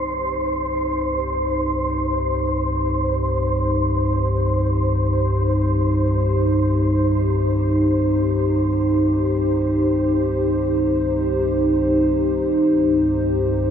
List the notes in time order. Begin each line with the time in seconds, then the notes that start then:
Already playing: C2 G2 D#4 G4 C5
12.15 C2 G2